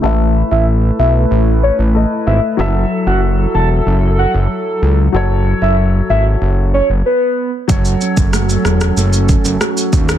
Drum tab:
SH |----------------|----------------|----------------|xxxxxxxxxxxxxxxx|
SD |----------------|----------------|----------------|----r-rr----r--r|
BD |----------------|----------------|----------------|o--o------o---o-|